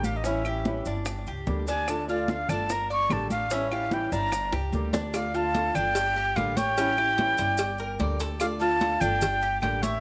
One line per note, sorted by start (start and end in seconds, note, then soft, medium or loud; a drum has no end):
0.00 0.80 A1 loud
0.00 high bongo soft
0.00 high conga medium
0.04 0.25 A#3 soft
0.04 0.24 D4 soft
0.04 0.24 G4 soft
0.04 0.24 G4 medium
0.04 0.18 F5 medium
0.04 maracas medium
0.17 0.28 D#5 medium
0.24 0.44 E3 medium
0.24 0.45 G3 medium
0.24 0.45 C#4 medium
0.24 0.44 E4 medium
0.24 0.87 E5 medium
0.24 high bongo medium
0.24 high conga soft
0.24 maracas medium
0.45 0.65 G3 soft
0.45 0.65 C#4 soft
0.45 0.64 E4 soft
0.45 0.85 G4 medium
0.45 high bongo soft
0.45 high conga soft
0.45 claves medium
0.45 maracas soft
0.65 0.85 E3 medium
0.65 0.85 G3 medium
0.65 0.85 C#4 medium
0.65 0.85 E4 medium
0.65 high bongo medium
0.65 high conga loud
0.65 maracas soft
0.85 1.24 G1 medium
0.85 1.05 G3 soft
0.85 1.06 C#4 soft
0.85 1.26 D4 medium
0.85 1.06 E4 soft
0.85 high bongo soft
0.85 maracas medium
1.05 muted nylon-string guitar stroke medium
1.05 high bongo medium
1.05 high conga soft
1.05 claves medium
1.05 maracas medium
1.27 1.46 C#2 medium
1.27 1.67 G4 medium
1.27 high conga soft
1.27 maracas soft
1.47 2.43 D2 loud
1.47 1.67 D3 medium
1.47 1.67 G3 medium
1.47 1.67 A#3 medium
1.47 1.67 D4 medium
1.47 1.66 G4 medium
1.47 high bongo soft
1.47 low bongo medium
1.47 high conga medium
1.47 maracas soft
1.67 1.88 A#3 soft
1.67 1.87 D4 soft
1.67 2.07 D4 loud
1.67 1.87 G4 medium
1.67 1.92 G#5 medium
1.67 high bongo soft
1.67 maracas medium
1.88 2.07 D3 medium
1.88 2.08 A3 medium
1.88 2.08 D4 medium
1.88 2.07 F4 medium
1.88 2.08 A5 medium
1.88 high bongo medium
1.88 high conga soft
1.88 claves medium
1.88 maracas medium
2.08 2.28 A3 soft
2.08 2.28 D4 soft
2.08 2.28 F4 soft
2.08 2.48 F4 medium
2.08 2.31 D5 medium
2.08 high bongo soft
2.08 high conga soft
2.08 maracas soft
2.28 2.48 D3 medium
2.28 2.49 A3 medium
2.28 2.49 D4 medium
2.28 2.48 F4 medium
2.28 2.51 F5 medium
2.28 high bongo medium
2.28 high conga loud
2.28 maracas soft
2.49 3.06 G1 medium
2.49 2.70 A3 soft
2.49 2.69 D4 medium
2.49 2.69 D4 soft
2.49 2.69 F4 soft
2.49 2.73 A5 loud
2.49 high bongo soft
2.49 high conga soft
2.49 low conga medium
2.49 claves medium
2.49 maracas medium
2.69 2.90 A#4 medium
2.69 2.91 A#5 medium
2.69 muted nylon-string guitar stroke medium
2.69 high bongo medium
2.69 high conga soft
2.69 maracas medium
2.90 3.30 D5 medium
2.90 3.14 C#6 loud
2.90 high conga soft
2.90 maracas soft
3.10 4.06 A1 medium
3.10 3.30 D3 medium
3.10 3.30 G3 medium
3.10 3.30 A#3 medium
3.10 3.30 D4 medium
3.10 3.29 G4 loud
3.10 3.30 A5 loud
3.10 high bongo soft
3.10 low bongo medium
3.10 high conga medium
3.10 claves medium
3.10 maracas soft
3.30 3.51 A#3 soft
3.30 3.51 D4 soft
3.30 3.50 G4 soft
3.30 3.50 G4 medium
3.30 3.55 F5 loud
3.30 high bongo soft
3.30 high conga medium
3.30 maracas medium
3.50 3.70 E3 medium
3.50 3.71 G3 medium
3.50 3.71 C#4 loud
3.50 3.71 C#4 medium
3.50 3.70 E4 medium
3.50 3.71 E5 medium
3.50 high bongo medium
3.50 high conga soft
3.50 maracas medium
3.71 3.91 G3 soft
3.71 3.91 C#4 soft
3.71 3.91 E4 soft
3.71 4.11 G4 medium
3.71 3.95 F5 medium
3.71 high bongo soft
3.71 high conga soft
3.71 claves medium
3.71 maracas soft
3.91 4.11 E3 medium
3.91 4.12 G3 medium
3.91 4.12 C#4 medium
3.91 4.11 E4 medium
3.91 4.14 G5 medium
3.91 high bongo medium
3.91 high conga loud
3.91 maracas soft
4.12 4.50 G1 loud
4.12 4.31 G3 soft
4.12 4.52 D4 medium
4.12 4.32 E4 soft
4.12 4.53 A#5 loud
4.12 high bongo soft
4.12 maracas medium
4.32 muted nylon-string guitar stroke medium
4.32 high bongo medium
4.32 high conga soft
4.32 claves medium
4.32 maracas medium
4.52 4.72 C#2 medium
4.52 4.92 G4 medium
4.52 high bongo medium
4.52 high conga soft
4.52 maracas soft
4.73 5.69 D2 loud
4.73 4.93 D3 medium
4.73 4.93 G3 medium
4.73 4.93 A#3 medium
4.73 4.93 D4 medium
4.73 4.92 G4 medium
4.73 high conga medium
4.73 maracas soft
4.93 5.14 A#3 soft
4.93 5.13 D4 loud
4.93 5.13 D4 soft
4.93 5.13 G4 soft
4.93 low bongo loud
4.93 high conga medium
4.93 maracas medium
5.14 5.33 D3 medium
5.14 5.34 A3 medium
5.14 5.34 D4 medium
5.14 5.33 F4 medium
5.14 5.34 D5 medium
5.14 5.37 F5 loud
5.14 cowbell loud
5.14 high conga soft
5.14 claves medium
5.14 maracas medium
5.34 5.54 A3 soft
5.34 5.54 D4 soft
5.34 5.54 F4 soft
5.34 5.74 F4 medium
5.34 5.77 A5 loud
5.34 high conga soft
5.34 maracas soft
5.54 5.74 D3 medium
5.54 5.74 A3 medium
5.54 5.75 D4 medium
5.54 5.74 F4 medium
5.54 cowbell medium
5.54 high conga loud
5.54 maracas soft
5.75 6.32 G1 medium
5.75 5.95 A3 soft
5.75 6.15 D4 medium
5.75 5.95 D4 soft
5.75 5.95 F4 soft
5.75 6.38 G5 loud
5.75 high conga soft
5.75 low conga medium
5.75 claves medium
5.75 maracas medium
5.95 muted nylon-string guitar stroke medium
5.95 cowbell loud
5.95 high conga soft
5.95 maracas medium
6.16 6.56 G4 medium
6.16 high conga soft
6.16 maracas soft
6.36 7.32 A1 medium
6.36 6.56 D3 medium
6.36 6.56 G3 medium
6.36 6.56 A#3 medium
6.36 6.56 D4 medium
6.36 6.55 G4 medium
6.36 6.58 F5 loud
6.36 cowbell medium
6.36 high conga medium
6.36 claves medium
6.36 maracas soft
6.57 6.77 A#3 soft
6.57 6.77 C#5 medium
6.57 8.20 G5 loud
6.57 cowbell medium
6.57 high conga loud
6.57 maracas medium
6.77 6.97 E3 medium
6.77 6.97 G3 medium
6.77 6.97 C#4 medium
6.77 6.96 E4 medium
6.77 cowbell loud
6.77 high conga soft
6.77 maracas medium
6.97 7.17 G3 soft
6.97 7.17 E4 medium
6.97 7.37 G4 medium
6.97 high conga soft
6.97 claves medium
6.97 maracas soft
7.18 7.37 E3 medium
7.18 7.38 G3 medium
7.18 7.38 C#4 medium
7.18 7.37 E4 medium
7.18 cowbell medium
7.18 high conga loud
7.18 maracas soft
7.38 7.96 G1 loud
7.38 7.58 G3 soft
7.38 7.58 C#4 soft
7.38 7.58 E4 soft
7.38 7.78 D5 medium
7.38 cowbell medium
7.38 maracas medium
7.58 muted nylon-string guitar stroke medium
7.58 cowbell loud
7.58 high conga soft
7.58 claves medium
7.58 maracas medium
7.78 7.99 A#4 medium
7.78 high conga soft
7.78 maracas soft
7.99 8.95 D2 loud
7.99 8.19 D3 medium
7.99 8.19 G3 medium
7.99 8.19 A#3 medium
7.99 8.19 D4 medium
7.99 8.18 G4 medium
7.99 8.19 D5 medium
7.99 cowbell medium
7.99 high conga medium
7.99 maracas soft
8.19 8.40 A#3 soft
8.19 8.40 D4 soft
8.19 8.39 G4 medium
8.19 8.40 A4 medium
8.19 cowbell medium
8.19 maracas medium
8.40 8.60 D3 medium
8.40 8.60 A3 medium
8.40 8.60 D4 medium
8.40 8.58 F4 medium
8.40 8.60 D5 medium
8.40 8.46 F5 loud
8.40 cowbell medium
8.40 high conga soft
8.40 claves medium
8.40 maracas medium
8.60 8.79 A3 soft
8.60 8.80 D4 medium
8.60 8.80 F4 medium
8.60 9.00 F4 medium
8.60 9.02 A5 loud
8.60 high conga soft
8.60 maracas soft
8.80 9.00 D3 medium
8.80 9.00 A3 medium
8.80 8.99 D4 medium
8.80 8.98 F4 medium
8.80 cowbell medium
8.80 high conga loud
8.80 maracas soft
9.00 9.58 G1 medium
9.00 9.21 A3 soft
9.00 9.20 D4 soft
9.00 9.41 D4 medium
9.00 9.20 F4 soft
9.00 9.61 G5 loud
9.00 high conga soft
9.00 low conga medium
9.00 claves medium
9.00 maracas medium
9.20 muted nylon-string guitar stroke medium
9.20 cowbell loud
9.20 high conga soft
9.20 low conga medium
9.20 maracas medium
9.42 9.82 G4 medium
9.42 high conga soft
9.42 maracas soft
9.62 10.00 A1 medium
9.62 9.82 D3 medium
9.62 9.82 G3 medium
9.62 9.82 A#3 medium
9.62 9.82 D4 medium
9.62 9.81 G4 medium
9.62 9.84 G5 loud
9.62 cowbell medium
9.62 high conga medium
9.62 claves medium
9.62 maracas soft
9.82 10.00 A#3 soft
9.82 10.00 D4 soft
9.82 10.00 G4 soft
9.82 10.00 C#5 medium
9.82 10.00 E5 loud
9.82 cowbell medium
9.82 high conga medium
9.82 maracas medium